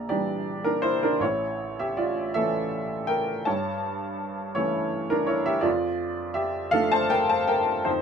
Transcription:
upright piano
Already playing: A#1 D5 A#5
0.09 E3 G3 D4 G4 D5
0.64 D4 A#4
0.82 E4 C5
1.03 D4 A#4
1.20 A1 E4 C#5
1.79 G4 E5
1.97 F4 D5
2.34 E3 A3 C#4 A4 E5
3.07 A#4 G5
3.45 G2 C#5 A5
4.55 E3 A3 C#4 E4 C#5
5.10 D4 A#4
5.27 E4 C#5
5.46 G4 E5
5.61 F2 F4 D5
6.34 G4 E5
6.71 F3 A3 D4 A4 F5
6.92 C5 A5
7.10 A#4 G5
7.30 C5 A5
7.47 A#4 G5
7.85 F2 D#4 C5

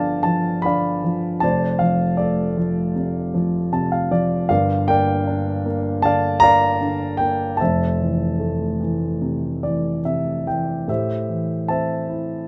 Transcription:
grand piano
Already playing: G1 G2 D3 F3 B3 B4 D5 F5 G5 A5
0.23 F3 A5
0.62 D3 D5 F5 B5
1.04 F3
1.40 F1 F2 C5 D5 A5
1.79 F3 F5
2.17 A3 A4 D5
2.57 F3
2.95 C3
3.34 F3
3.72 C3 A5
3.92 F5
4.11 F3 D5
4.49 G1 G2 A#4 D5 F5
4.88 A#3 A#4 D5 G5
5.27 D4
5.66 A#3
6.02 D3 D5 F5 A5
6.40 A#3 D5 F5 A#5
6.81 D3
7.17 A#3 G5
7.57 C5 E5 A5
7.61 F1 F2
8.00 E3
8.40 A3
8.81 E3
9.21 C3
9.63 E3 D5
10.05 C3 E5
10.47 E3 G5
10.88 A2 G4 C5 E5
11.29 E3
11.68 C4 C5 E5 A5
12.09 E4

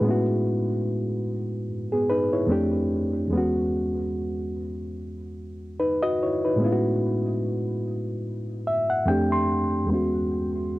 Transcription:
reed electric piano
Already playing: D#4 B4
0.01 A2 G#3 B3
0.07 C#4 E4 F#4
1.92 B3 G#4
2.10 D#4 B4
2.33 E4 C#5
2.47 F2 A3 C4 D4
2.52 G4
3.28 E2 G#3
3.33 B3 C#4
3.37 F#4
5.80 D#4 B4
6.03 F#4 D#5
6.23 E4 C#5
6.45 D#4 B4
6.56 A2 G#3 B3
6.62 C#4 E4 F4
6.72 F#4
8.67 E5
8.90 F#5
9.06 F2 A3 C4 D4 G5
9.10 G4
9.32 C6
9.84 E2 G#3
9.89 B3 C#4
9.94 F#4

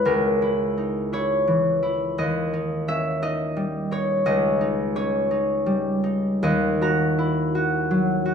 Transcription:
harp
Already playing: E4 E5
0.05 C#2 A#4
0.42 E4
0.78 D#4
1.13 E4 C#5
1.47 E3
1.83 E4
2.18 D#2 D#5
2.53 D#4
2.88 C#4 E5
3.22 D#4 D#5
3.56 G3
3.91 D#4 C#5
4.26 C#2 D#5
4.61 D#4
4.96 C#4 C#5
5.31 D#4
5.66 G3
6.04 D#4
6.43 D#2 D#5
6.81 F#4 A#5
7.18 E4
7.55 F#4
7.91 F#3
8.25 F#4

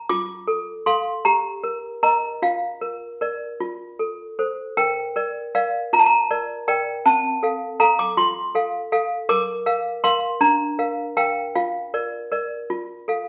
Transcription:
toy piano
0.09 F4 D6
0.48 A4
0.86 A4 F5 C6
1.25 G4 A#5
1.64 A#4
2.03 A#4 D#5 A#5
2.42 F4 F5
2.81 A#4
3.21 A#4 D5
3.60 F4
3.99 A4
4.39 A4 C5
4.77 A#4 G5
5.16 A#4 D5
5.55 A#4 D5 F5
5.93 F4 A#5
5.99 A5
6.06 A#5
6.31 A#4 D5
6.68 A#4 D5 G5
7.06 C4 A5
7.43 A4 F5
7.80 A4 F5 A#5
7.99 D6
8.17 F4 C6
8.55 A4 F5
8.92 A4 F5
9.29 A#4 D6
9.66 A#4 F5
10.04 A#4 F5 C6
10.41 D4 A#5
10.79 A#4 F5
11.17 A#4 F5 G5
11.55 F4 F5
11.94 A#4 D5
12.32 A#4 D5
12.70 F4
13.08 A4 F5

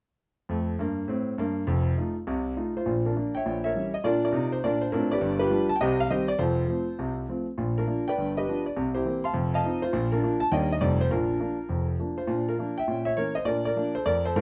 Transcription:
grand piano
0.49 F2 A3
0.79 G2 A#3
1.08 A2 C4
1.38 G2 A#3
1.67 F1 F2
1.98 A3 D#4 F4
2.27 C2 C3
2.56 A3 D#4 F4
2.77 F4 C5
2.86 A#1 A#2
3.06 D4 F4 A#4
3.17 F3 A#3 D4
3.35 C#5 E5 G5
3.46 A#1 A#2
3.64 A#4 C#5 E5
3.75 E3 G3 C#4
3.94 D#5
4.04 A#2 D4 F4 A#4 D5
4.25 F4 A#4 D5
4.32 C3 D#4
4.52 C5
4.64 A#2 D4 F4 A#4 D5
4.81 C5
4.92 A2 C4 D4 F4 A#4
5.12 G4 B4 D5
5.21 G1 G2
5.39 F4 G4 B4
5.50 F3 G3 D4
5.69 A5
5.76 G5
5.81 C2 C3 G4 C5 D#5
6.00 F5
6.10 D#3 G3 C4 G4 C5 D#5
6.28 D5
6.39 F1 F2 F4 A4 C5
6.68 F3 A3 C4
6.99 C2 C3
7.29 F3 A3 C4
7.58 A#1 A#2
7.78 D4 F4 A#4
7.87 F3 A#3 D4
8.08 B4 D5 G5
8.18 G1 G2
8.37 G4 B4 D#5
8.48 F3 B3 D4
8.66 D5
8.77 C2 C3
8.94 E4 G4 C5
9.05 E3 A#3 C4
9.24 F5 A5 C6
9.33 F1 F2
9.54 D#5 F5 A5
9.64 F3 C4 D#4
9.82 F4 C5
9.93 A#1 A#2
10.12 D4 F4 A#4
10.22 F3 A#3 D4
10.40 A5
10.52 D#2 D#3 G3 A#3 D4 D5 D#5 G5
10.72 D#5
10.81 F1 F2 G3 A3 D#4 D5
11.01 C5
11.11 A#1 A#2 D4 F4 A#4
11.40 F3 A#3 D4
11.69 F1 F2
11.99 F3 A#3 D4
12.18 F4 C5
12.27 A#2 D4
12.49 F4 A#4
12.58 F3 A#3 D4
12.78 E5 G5
12.88 A#2 C#4
13.05 C#5 E5
13.17 E3 A#3 C#4 A#4 C#5
13.35 C5 D#5
13.45 A#2 D4 A#4 D5
13.65 A#4 D5
13.76 F3 A#3 D4
13.95 A4 C5
14.06 F2 A#4 D5
14.25 A4 C5
14.36 G#1 G#2 F4 A#4

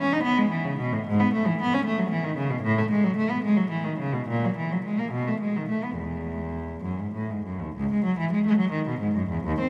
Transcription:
cello
0.01 C#4
0.13 D#4
0.23 B3
0.38 G#3
0.50 E3
0.65 C#3
0.79 B2
0.92 A2
1.07 G#2
1.20 B3
1.34 A3
1.47 E3
1.62 B3
1.74 C#4
1.85 A3
1.98 F#3
2.11 E3
2.24 D#3
2.37 C#3
2.50 B2
2.62 A2
2.78 A3
2.91 G#3
3.04 F#3
3.17 A3
3.30 B3
3.44 G#3
3.56 F#3
3.70 E3
3.84 D#3
3.99 C#3
4.13 B2
4.28 A#2
4.45 F#3
4.57 E3
4.72 F#3
4.84 G#3
4.99 A#3
5.12 B2
5.27 A3
5.40 G#3
5.56 D#3
5.69 A3
5.84 B3
5.97 E2
6.84 F#2
7.00 G#2
7.14 A2
7.31 G#2
7.45 F#2
7.61 D#2
7.76 C#2
7.93 G#3
8.04 F#3
8.18 E3
8.32 G#3
8.46 A3
8.59 F#3
8.71 D#3
8.88 B2
9.01 G#2
9.16 F#2
9.30 E2
9.44 D#2
9.60 C4

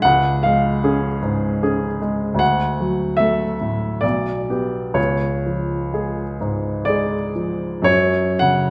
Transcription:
grand piano
0.02 C#2 F#5
0.43 G#3 F5
0.84 C#4 G#4
1.22 G#2
1.63 C#4 G#4
2.02 G#3
2.34 D2
2.39 F#5
2.80 F#3
3.17 A3 A4 E5
3.61 A2
4.01 B1 D5
4.50 B3 G4
4.94 C#2 C#5
5.46 F3
5.93 G#3 G#4
6.41 G#2
6.85 G#3 G#4 D5
7.35 F3
7.82 F#2 C#5
8.39 C#3 F#5

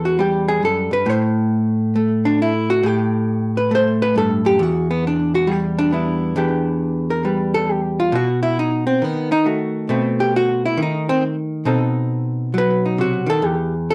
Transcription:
hollow-body jazz guitar
Already playing: E2
0.05 F#4
0.19 G3 G4
0.48 G#4
0.63 F#2 A4
0.91 G2 B4
1.06 A2 C5
1.96 A3
2.25 D4
2.42 E4
2.70 F#4
2.83 A2 G4
3.57 B4
3.71 A3 C5
4.02 B4
4.16 G2 A4
4.45 F#2 G4
4.59 E2 F#4
4.91 B3
5.07 D4
5.35 F#4
5.47 G3
5.51 G4
5.79 D4
5.92 B3 D4 E4
6.36 E2 B3 D4 G4
7.10 A#4
7.25 G3 B4
7.54 A4
7.72 G4
8.00 F4
8.12 B2 F#4
8.43 E4
8.59 D#4
8.87 C4
9.02 D#3 B3
9.32 D#4
9.45 A3 F#4
9.89 B2 A3 C4
10.20 G4
10.36 F#4
10.65 E4
10.77 D#3
10.82 D#4
11.09 C4
11.65 B2 C4 D#4 A4
12.54 F#3
12.58 B4
12.86 D#4
12.98 C3 F#4
13.26 D#3 A4
13.42 E2 G4
13.90 A4

